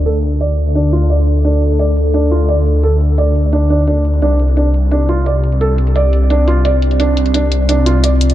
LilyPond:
<<
  \new Staff \with { instrumentName = "Ambient pad" } { \time 4/4 \key d \minor \tempo 4 = 173 << { <d' d''>1~ | <d' d''>1~ | <d' d''>1 | <c' d''>1~ |
<c' d''>1~ | <c' d''>1 | } \\ { a'1~ | a'1~ | a'1 | g'1~ |
g'1 | f'1 | } >> }
  \new Staff \with { instrumentName = "Felt piano" } { \time 4/4 \key d \minor a'8 r8 d''8 r8 d'8 f'8 d''8 r8 | d'8 r8 d''8 r8 d'8 f'8 d''8 r8 | a'8 r8 d''8 r8 d'8 d'8 d'8 r8 | d'8 r8 d'8 r8 d'8 f'8 d''8 r8 |
a'8 r8 d''8 r8 d'8 f'8 d''8 r8 | d'8 r8 d'8 r8 d'8 f'8 d''8 r8 | }
  \new Staff \with { instrumentName = "Detuned saw bass" } { \clef bass \time 4/4 \key d \minor d,1~ | d,1~ | d,1 | c,1~ |
c,1~ | c,1 | }
  \new DrumStaff \with { instrumentName = "Drums" } \drummode { \time 4/4 hh8 hh16 hh16 hh8 hh8 hh8 hh8 hh8 hh16 hh16 | hh8 hh16 hh16 hh8 hh8 hh8 hh8 hh8 hh16 hh16 | hh8 hh16 hh16 hh8 hh8 hh8 hh8 hh8 hh16 hh16 | hh8 hh16 hh16 hh8 hh8 hh8 hh8 hh8 hh16 hh16 |
hh8 hh16 hh16 hh8 hh8 hh8 hh8 hh8 hh16 hh16 | hh8 hh16 hh16 hh8 hh8 hh8 hh8 hh8 hh16 hh16 | }
>>